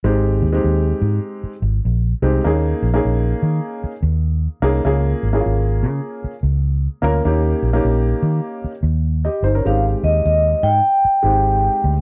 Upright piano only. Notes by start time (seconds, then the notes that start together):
0.04 G#3 C4 D#4 G4
0.53 G#3 C4 D#4 G4
2.22 G#3 C4 D#4 G4
2.44 A#3 C#4 D#4 G#4
2.94 A#3 C#4 D#4 G#4
4.62 A#3 C#4 D#4 G#4
4.85 A#3 C#4 F4 G#4
5.33 A#3 C#4 E4 G#4
5.41 F4
7.02 A#3 C#4 F4 A#4
7.25 A#3 C#4 D#4 G4
7.73 A#3 C#4 D#4 G4
9.25 G4 D#5
9.44 D#4 C5
9.55 C#4 A#4
9.65 G#3 C4 D#4 G4
11.23 G#3 C4 D#4 G4